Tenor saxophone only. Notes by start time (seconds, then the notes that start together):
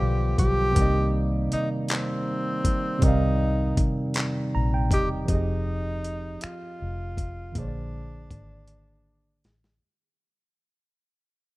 Already playing: G4
0.40 G4
1.53 D#4
1.92 C4
3.04 D#4
4.94 G4
5.30 D#4
6.43 F4
7.58 D4